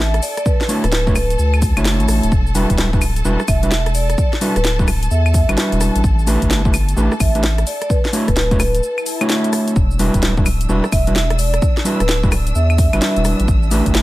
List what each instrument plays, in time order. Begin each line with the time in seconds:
Already playing: sub bass A1, violin section A4 A5, vibraphone E5
0.14 cross-stick, closed hi-hat, shaker
0.22 vibraphone D5, open hi-hat, shaker
0.37 vibraphone D5, cross-stick, closed hi-hat, shaker
0.46 vibraphone B4, kick, shaker
0.61 snare, shaker
0.69 clean electric guitar A3 D4 E4 F#4 C#5, open hi-hat, shaker
0.84 sub bass D1, vibraphone B4, cross-stick, closed hi-hat, shaker
0.92 snare, shaker
1.07 clean electric guitar A3 D4 E4 F#4 C#5, kick, shaker
1.16 cross-stick, open hi-hat, claves, shaker
1.30 closed hi-hat, shaker
1.39 sub bass D2, shaker
1.54 claves, shaker
1.62 kick, open hi-hat, shaker
1.76 sub bass F#1, clean electric guitar A3 D4 E4 F#4 C#5, closed hi-hat, claves, shaker
1.85 snare, open hi-hat, shaker
2.00 sub bass A1, closed hi-hat, shaker
2.08 sub bass A1, cross-stick, open hi-hat, shaker
2.23 sub bass D1, closed hi-hat, shaker
2.32 sub bass E1, kick, shaker
2.47 shaker
2.55 clean electric guitar G3 D4 E4 F#4 B4, open hi-hat, shaker
2.70 sub bass D1, kick, closed hi-hat, shaker
2.78 snare, shaker
2.93 clean electric guitar G3 D4 E4 F#4 B4, kick, shaker
3.02 open hi-hat, claves, shaker
3.16 closed hi-hat, shaker
3.25 sub bass E1, clean electric guitar G3 D4 E4 F#4 B4, shaker
3.40 cross-stick, shaker
3.48 sub bass E1, vibraphone E5, kick, open hi-hat, claves, shaker
3.63 clean electric guitar G3 D4 E4 F#4 B4, closed hi-hat, shaker
3.71 snare, shaker
3.86 cross-stick, closed hi-hat, shaker
3.95 vibraphone D5, open hi-hat, shaker
4.10 cross-stick, closed hi-hat, shaker
4.18 kick, shaker
4.33 snare, shaker
4.41 clean electric guitar G3 D4 E4 F#4 B4, open hi-hat, shaker
4.56 sub bass D1, vibraphone B4, cross-stick, closed hi-hat, shaker
4.65 vibraphone B4, snare, shaker
4.79 clean electric guitar G3 D4 E4 F#4 B4, kick, shaker
4.88 cross-stick, open hi-hat, claves, shaker
5.03 closed hi-hat, shaker
5.11 sub bass E2, vibraphone E5, shaker
5.26 claves, shaker
5.34 kick, open hi-hat, shaker
5.48 sub bass G1, clean electric guitar G3 D4 E4 F#4 B4, closed hi-hat, claves, shaker
5.58 snare, open hi-hat, shaker
5.72 sub bass E1, closed hi-hat, shaker
5.81 cross-stick, open hi-hat, shaker
5.95 sub bass A1, closed hi-hat, shaker
6.04 sub bass A1, kick, shaker
6.19 shaker
6.27 clean electric guitar A3 D4 E4 G4 B4, open hi-hat, shaker
6.42 sub bass G1, kick, closed hi-hat, shaker
6.51 snare, shaker
6.65 clean electric guitar A3 D4 E4 G4 B4, kick, shaker
6.74 open hi-hat, claves, shaker
6.89 closed hi-hat, shaker
6.97 sub bass A1, clean electric guitar A3 D4 E4 G4 B4, shaker
7.12 cross-stick, shaker
7.20 sub bass A1, vibraphone E5, kick, open hi-hat, claves, shaker
7.35 clean electric guitar A3 D4 E4 G4 B4, closed hi-hat, shaker
7.44 snare, shaker
7.58 cross-stick, closed hi-hat, shaker
7.67 vibraphone D5, open hi-hat, shaker
7.82 vibraphone D5, cross-stick, closed hi-hat, shaker
7.90 vibraphone B4, kick, shaker
8.05 snare, shaker
8.13 clean electric guitar A3 D4 E4 F#4 C#5, open hi-hat, shaker
8.28 sub bass D1, vibraphone B4, kick, cross-stick, closed hi-hat, shaker
8.37 snare, shaker
8.51 clean electric guitar A3 D4 E4 F#4 C#5, kick, closed hi-hat, shaker
8.60 cross-stick, open hi-hat, claves, shaker
8.75 closed hi-hat, shaker
8.83 swell, shaker
8.98 claves, shaker
9.06 open hi-hat, shaker
9.21 clean electric guitar A3 D4 E4 F#4 C#5, closed hi-hat, claves, shaker
9.30 snare, open hi-hat, shaker
9.44 closed hi-hat, shaker
9.53 cross-stick, open hi-hat, shaker
9.68 closed hi-hat, shaker
9.76 sub bass E1, violin section D4 E6, kick, shaker
9.91 shaker
9.99 clean electric guitar G3 D4 E4 F#4 B4, open hi-hat, shaker
10.14 sub bass D1, kick, closed hi-hat, shaker
10.23 snare, shaker
10.37 clean electric guitar G3 D4 E4 F#4 B4, kick, shaker
10.46 open hi-hat, claves, shaker
10.61 closed hi-hat, shaker
10.69 sub bass E1, clean electric guitar G3 D4 E4 F#4 B4, shaker
10.84 cross-stick, shaker
10.92 sub bass E1, vibraphone E5, kick, open hi-hat, claves, shaker
11.07 clean electric guitar G3 D4 E4 F#4 B4, closed hi-hat, shaker
11.16 snare, shaker
11.30 cross-stick, closed hi-hat, shaker
11.39 vibraphone D5, open hi-hat, shaker
11.54 vibraphone D5, cross-stick, closed hi-hat, shaker
11.62 kick, shaker
11.77 snare, shaker
11.85 clean electric guitar G3 D4 E4 F#4 B4, open hi-hat, shaker
12.00 sub bass D1, vibraphone B4, cross-stick, closed hi-hat, shaker
12.09 vibraphone B4, snare, shaker
12.23 clean electric guitar G3 D4 E4 F#4 B4, kick, shaker
12.32 cross-stick, open hi-hat, claves, shaker
12.47 closed hi-hat, shaker
12.55 sub bass E2, vibraphone E5, shaker
12.70 claves, shaker
12.78 kick, open hi-hat, shaker
12.93 sub bass G1, clean electric guitar G3 D4 E4 F#4 B4, closed hi-hat, claves, shaker
13.02 snare, open hi-hat, shaker
13.16 sub bass E1, closed hi-hat, shaker
13.25 cross-stick, open hi-hat, shaker
13.40 sub bass A1, closed hi-hat, shaker
13.48 sub bass A1, kick, shaker
13.63 shaker
13.71 clean electric guitar A3 D4 E4 G4 B4, open hi-hat, shaker
13.86 sub bass G1, kick, closed hi-hat, shaker
13.95 snare, shaker